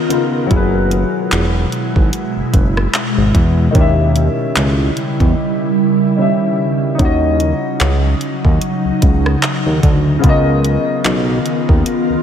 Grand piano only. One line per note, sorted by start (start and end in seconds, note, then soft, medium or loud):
0.08 0.50 C#3 medium
0.08 0.51 B3 medium
0.08 0.51 D#4 medium
0.08 0.52 F4 medium
0.13 0.52 A#4 medium
0.46 3.69 F#3 medium
0.46 3.71 E4 medium
0.53 3.72 G#4 medium
0.53 3.74 B4 medium
3.71 6.12 D#3 medium
3.71 6.14 C#4 medium
3.77 6.16 G4 medium
3.77 6.17 E5 medium
6.16 6.99 D#3 medium
6.16 6.97 C#4 medium
6.16 7.00 G4 medium
6.22 7.01 E5 medium
6.95 10.19 C#4 medium
6.95 10.18 D#4 medium
7.02 10.21 F#4 medium
7.02 10.23 D#5 medium
10.19 12.23 C#3 medium
10.19 12.23 B3 medium
10.24 12.23 F4 medium
10.24 12.23 A#4 medium
10.29 12.23 D#5 medium